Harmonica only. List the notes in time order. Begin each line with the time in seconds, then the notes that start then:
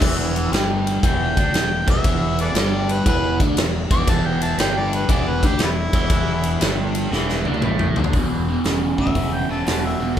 Already playing: E5
1.05 G5
1.90 E5
2.41 A4 B4 D5
2.91 B4
3.08 B4
3.92 D6
4.10 A5
4.26 G5
4.42 A5
4.60 G5
4.77 D5
4.95 B4
5.11 D5
5.29 B4
5.46 G4
5.63 G3 B3 E4
9.00 E5
9.34 G5
9.51 E5 A5
9.85 E5